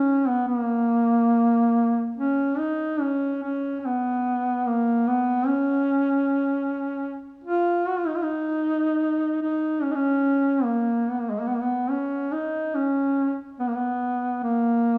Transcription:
Already playing: C#4
0.27 B3
0.47 A#3
2.17 C#4
2.58 D#4
3.00 C#4
3.42 C#4
3.80 C#4
3.86 B3
4.67 A#3
5.08 B3
5.47 C#4
7.44 F4
7.87 F#4
7.97 F4
8.07 D#4
8.15 F4
8.23 D#4
9.42 D#4
9.82 C#4
9.92 C#4 D#4
10.64 A#3
11.10 B3
11.20 A#3
11.30 G#3
11.40 A#3
11.47 B3
11.54 A#3
11.61 B3
11.90 C#4
12.32 D#4
12.75 C#4
13.59 B3
13.67 A#3
13.75 B3
14.43 A#3

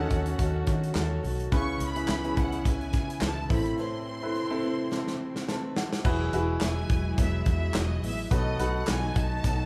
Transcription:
Already playing: D#3 F#3 A3 C#4 F#4 F#5
0.00 D#4 F#4 A4
0.10 D#2 C#4 F#4 A4, kick, closed hi-hat
0.26 closed hi-hat
0.38 D#2 F#3 C#4 F#4 A4, kick, closed hi-hat
0.67 D#3, kick, snare, closed hi-hat
0.83 closed hi-hat
0.94 D#2 F#3 C#4 F#4 A4, snare, clap
1.23 B1 C#4 F#4 A4, open hi-hat
1.40 closed hi-hat
1.52 C#2 C#3 G#3 B3 C#4 E4 G#4 B4 C#6, kick, closed hi-hat
1.80 C#2 B5, closed hi-hat
1.96 C#4 E4 G#4 B4, closed hi-hat
2.08 C#2 G#3 B3 E4 B4, snare, clap
2.24 C#4 E4 G#4 B4, closed hi-hat
2.36 C#2 B3 E4 B4 F#5, kick, closed hi-hat
2.52 closed hi-hat
2.65 C#2 G#3 B3 E4 B4 G#5, kick, closed hi-hat
2.81 closed hi-hat
2.93 C#3, kick, snare, closed hi-hat
3.10 closed hi-hat
3.21 C#2 G#3 B3 E4 B4 A5, snare, clap
3.49 A1 A2 C3 A3 C4 E4 A4 B4 B5, kick, open hi-hat
3.66 closed hi-hat
3.78 A2 E3 A3 C4 E4 B4 C6
4.22 C4 E4 A4 B4
4.34 A3 C4 E4 B4
4.50 C4 E4 A4
4.63 A3 C4 E4 B4
4.91 A3 C4 E4 B4, snare
5.08 snare
5.36 snare
5.47 A3 C4 E4 B4 A5, snare
5.76 A3 C4 E4 B4 F#5, snare
5.93 snare
6.04 E1 E3 F#3 G#3 B3 E4 F#4 G#4 B4, kick, crash
6.33 E1 E4 F#4 G#4 B4, closed hi-hat
6.61 E1 F#3 B3 E4 G#4 G#5, snare, clap, closed hi-hat
6.89 E1, kick, closed hi-hat
7.18 E1 E3 F#3 B3 E4 G#4 E5, kick, closed hi-hat
7.46 E2 E5, kick, closed hi-hat
7.74 E1 F#3 B3 E4 G#4 D#5, snare, clap, closed hi-hat
8.02 A1 B3 E4 G#4 E5, open hi-hat
8.30 B1 B2 D#3 F#3 A3 B3 D#4 F#4 A4 B4 D#5, kick, closed hi-hat
8.59 B1 D#4 F#4 A4 B4 F#5, closed hi-hat
8.87 B1 F#3 B3 D#4 A4 G#5, snare, clap, closed hi-hat
9.16 B1 A5, kick, closed hi-hat
9.43 B1 B2 D#3 F#3 B3 D#4 A4, kick, closed hi-hat

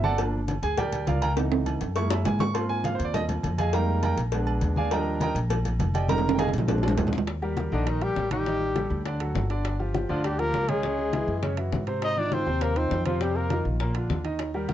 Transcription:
Already playing: G1 F#3 A#3 C4
0.04 A4 D5 F#5 A5, high conga
0.18 F3 A#3 D4, cowbell, high conga, low agogo
0.33 high conga
0.48 cowbell, high conga, low agogo
0.62 D2 G#4 G#5, cowbell, high conga
0.78 G4 A#4 D5 G5, cowbell, high conga, low conga, low agogo
0.92 cowbell, high conga, low conga, low agogo
1.07 C#2 F4 A#4 D5 F5, cowbell, high conga, low timbale, low agogo
1.22 A#4 F5 G5 A#5, cowbell, high conga, low agogo
1.36 E3 B3 D#4, cowbell, high conga, high timbale
1.52 high conga, high timbale
1.66 cowbell, high conga, low timbale, low agogo
1.81 F#2, cowbell, high conga, high timbale
1.96 G#3 A#3 E4 C#6, cowbell, high conga, low timbale, low agogo
2.10 E5, high bongo, high conga, low agogo
2.25 G#2 G#5, cowbell, high bongo, high conga, low timbale
2.39 C#6, low bongo, high conga, low timbale
2.53 A#3 C4 F4 C6, cowbell, high conga, low agogo
2.69 G#5, high conga
2.84 F5, cowbell, high conga, low agogo
2.95 C5, high conga
2.99 D#2, cowbell
3.05 D5
3.14 D#5, cowbell, high conga, low conga, low agogo
3.29 cowbell, high conga, low conga, low agogo
3.43 F2, cowbell, high conga, low agogo
3.58 G#4 D#5 F5 G#5, cowbell, high conga, low agogo
3.73 G3 G#3 A#3 D#4 A#4 F5 G5 A#5, cowbell, high conga
3.88 high conga
4.03 A#4 F5 G5 A#5, cowbell, high conga, low agogo
4.17 A#1, cowbell, high conga
4.32 G#3 B3 D4, cowbell, high conga, low agogo
4.47 high conga, low agogo
4.61 D#2, cowbell, high conga
4.76 G#4 D5 F5 G#5, high conga
4.91 F3 G3 D4 A#4 D#5 G5 A#5, cowbell, low agogo
5.06 high conga
5.21 A#4 D#5 G5 A#5, cowbell, high conga, low agogo
5.35 A#1, cowbell, high conga
5.50 cowbell, high conga, low conga, low agogo
5.65 cowbell, high conga, low conga, low agogo
5.79 F1, cowbell, high conga, low timbale, low agogo
5.94 G4 D5 D#5 G5, cowbell, high conga, low agogo
6.08 G3 G#3 D#4 A#4 A#5, cowbell, high conga, high timbale
6.18 high conga, high timbale
6.28 high conga, high timbale
6.34 G5, high conga
6.39 G#4 D#5 F5 G#5, cowbell, high timbale, low agogo
6.48 high conga, high timbale
6.53 A#1, cowbell
6.58 high conga, low timbale
6.67 G#3 C4 D4, cowbell, high bongo, low conga, low timbale, low agogo
6.78 low conga
6.83 high bongo, low agogo
6.88 low conga
6.97 D#2, cowbell, low bongo, low conga, low timbale
7.07 low conga, low timbale
7.13 low bongo
7.17 low conga, low timbale
7.26 high bongo, high conga, high timbale
7.42 G3 G4 A#4, high bongo, high conga
7.57 G3 G4 A#4, high bongo, high conga, high timbale
7.71 A#1 D3 D#3 D4 D#4 D#5, high bongo, high conga
7.86 D#3 D#4, high bongo, high conga, high timbale
8.01 G3 G4 A#4, high conga, high timbale
8.16 A1, high bongo, low bongo, high conga
8.31 D#3 G3 D#4 G4 D#5, high bongo, high conga, high timbale
8.46 D#3 D#4 D#5, high bongo, high conga
8.61 high bongo, high conga
8.75 G3 G4 A4, high bongo, high conga, high timbale
8.90 D2, high bongo, high conga
9.05 D3 D4 D5, high bongo, high conga, high timbale
9.20 F#3 F#4 A4, high conga, high timbale
9.35 G1, high bongo, low bongo, high conga, low timbale
9.50 D3 D4 D5, high bongo, high conga, high timbale
9.65 high bongo, high conga, high timbale
9.79 F3 F4 G4, high bongo, high conga
9.94 F3 F4 G4, high bongo, high conga, high timbale
10.09 D2 D3 F3 D4 F4 D5, high bongo, high conga
10.24 G3 G4, high bongo, high conga, high timbale
10.39 F3 A#3 F4 G4 A#4, high conga, high timbale
10.54 C#2, high bongo, low bongo, high conga
10.69 C#3 G#3 C#4 G#4 C#5, high bongo, high conga, high timbale
10.83 C#3 C#4 C#5, high bongo
10.98 high bongo, high conga
11.13 E3 E4 G#4, high bongo, high conga, high timbale
11.27 F#2, high bongo, high conga
11.43 C#3 C#4 C#5, high bongo, high conga, high timbale
11.57 E3 E4 F#4, high conga, high timbale
11.72 G#2, high bongo, low bongo, high conga
11.87 C3 C4 C5, high bongo, high conga, high timbale
12.02 D#4 D#5, high bongo, high conga, high timbale
12.17 D#3 D4 D#4 F4 D5, high bongo, high conga
12.31 D#3 C4 D#4 F4 C5, high bongo, high conga, high timbale
12.46 D#2 C3 C4 C5, high bongo, high conga
12.61 A#3 A#4, high bongo, high conga, high timbale
12.76 D#3 C4 D#4 F4 C5, high conga, high timbale
12.91 F2, high bongo, low bongo, high conga
13.06 C3 F3 C4 F4 C5, high bongo, high conga, high timbale
13.20 C3 G3 C4 G4 C5, high bongo, high conga
13.35 A#3 A#4, high bongo, high conga
13.50 D#3 D#4 F4, high bongo, high conga, high timbale
13.65 A#1, high bongo, high conga
13.80 A#2 A#3 A#4, high bongo, high conga, high timbale
13.95 D3 D4 F4, high conga, high timbale
14.09 D#2, high bongo, low bongo, high conga
14.24 D#3 D#4 D#5, high bongo, high conga, high timbale
14.39 high bongo, high conga, high timbale
14.54 G3 G4 A#4, high bongo, high conga
14.69 G3 G4 A#4, high bongo, high conga, high timbale

